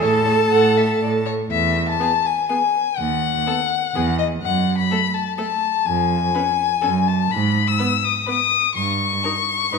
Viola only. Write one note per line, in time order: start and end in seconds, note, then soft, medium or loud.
0.00 1.23 A4 medium
1.99 2.07 B3 medium
2.49 2.57 B3 medium
3.47 3.55 B3 medium
3.95 4.03 B3 medium
4.91 4.99 A3 medium
5.38 5.46 A3 medium
6.35 6.43 C#4 medium
6.83 6.91 C#4 medium
7.80 7.88 B3 medium
8.28 8.36 B3 medium
9.25 9.33 D#4 medium
9.73 9.78 D#4 soft